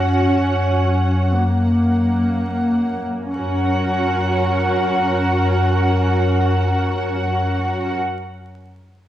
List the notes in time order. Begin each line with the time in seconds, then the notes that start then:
Already playing: F#2 C#4 F#4 F#5
1.34 A#3
3.33 F#2 C#4 F#4 A#4 F#5